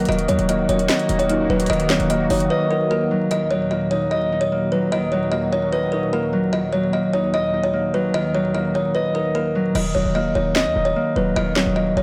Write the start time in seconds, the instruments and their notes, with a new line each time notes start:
Already playing: harp F#3 A#3 D#4 D#5
0.05 808-style bass D#1, harp D#3, analog synth pad D#3 A#3 F#4, kalimba D#5, closed hi-hat
0.12 closed hi-hat
0.19 closed hi-hat
0.28 808-style bass D#2, harp F#3, kalimba C#5, closed hi-hat
0.39 808-style bass D#1, closed hi-hat
0.49 harp A#3, kalimba D#5, closed hi-hat
0.69 808-style bass D#1, brass ensemble F#2 A#2 D#3, harp D#4, kalimba C#5, closed hi-hat
0.79 closed hi-hat
0.89 kalimba D#5, harp D#5, snare, clap, closed hi-hat
0.99 closed hi-hat
1.09 808-style bass D#1, harp D#4, closed hi-hat
1.19 kalimba C#5, closed hi-hat
1.29 brass ensemble F#2 A#2 D#3, harp A#3, closed hi-hat
1.50 808-style bass D#1, harp F#3, kalimba B4
1.60 closed hi-hat
1.66 808-style bass D#1, harp D#3, kalimba D#5, closed hi-hat
1.73 closed hi-hat
1.80 closed hi-hat
1.90 harp F#3, kalimba C#5, snare, clap, closed hi-hat
2.00 808-style bass D#1, closed hi-hat
2.10 harp A#3, kalimba D#5, closed hi-hat
2.30 808-style bass F#1, harp D#4, kalimba C#5, open hi-hat
2.40 closed hi-hat
2.50 kalimba B4, harp D#5
2.70 harp D#4, kalimba A#4
2.90 harp A#3, kalimba A#4
3.11 harp F#3
3.31 analog synth pad D#2 A#2 F#3, harp D#3, kalimba D#5, closed hi-hat
3.51 harp F#3, kalimba C#5
3.71 harp A#3, kalimba D#5
3.91 harp D#4, kalimba C#5
4.11 kalimba D#5, harp D#5
4.32 harp D#4
4.41 kalimba C#5
4.52 harp A#3
4.72 harp F#3, kalimba B4
4.92 harp D#3, kalimba D#5
5.12 harp F#3, kalimba C#5
5.32 harp A#3, kalimba D#5
5.52 harp D#4, kalimba C#5
5.72 kalimba B4, harp D#5
5.92 harp D#4, kalimba A#4
6.13 harp A#3, kalimba A#4
6.33 harp F#3
6.53 analog synth pad D#2, harp D#3, kalimba D#5
6.73 harp F#3, kalimba C#5
6.93 harp A#3, kalimba D#5
7.13 harp D#4, kalimba C#5
7.34 kalimba D#5, harp D#5
7.53 harp D#4
7.63 kalimba C#5
7.73 harp A#3
7.94 harp F#3, kalimba B4
8.14 harp D#3, kalimba D#5
8.34 harp F#3, kalimba C#5
8.55 harp A#3, kalimba D#5
8.74 harp D#4, kalimba C#5
8.95 kalimba B4, harp D#5
9.14 harp D#4, kalimba A#4
9.34 harp A#3, kalimba A#4
9.55 harp F#3
9.75 808-style bass D#1, harp D#3, kalimba D#5, crash
9.95 808-style bass D#1, harp F#3, kalimba C#5
10.05 808-style bass D#1
10.15 harp A#3, kalimba D#5
10.35 808-style bass D#1, harp D#4, kalimba C#5
10.55 kalimba D#5, harp D#5, snare, clap
10.66 808-style bass D#2
10.76 808-style bass D#1, harp D#4
10.85 kalimba C#5
10.96 harp A#3
11.16 808-style bass D#1, harp F#3, kalimba B4
11.36 808-style bass D#1, harp D#3, kalimba D#5
11.56 harp F#3, kalimba C#5, snare, clap
11.67 808-style bass D#1
11.76 harp A#3, kalimba D#5
11.97 808-style bass D#1, harp D#4, kalimba C#5